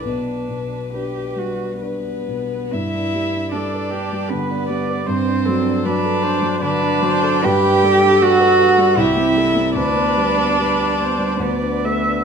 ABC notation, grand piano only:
X:1
M:3/4
L:1/16
Q:1/4=75
K:G
V:1 name="Grand piano"
B,,,2 B,,2 [DB]2 G,2 [DB]2 B,,2 | G,, D G, D G, B2 G, D, D G, B | G,, D F, D F, A D F, D, D F, A | G,, D G, D G, B D G, C,, C G, C |
D,, B, G, B, G, G B, G, D,, D A, D |]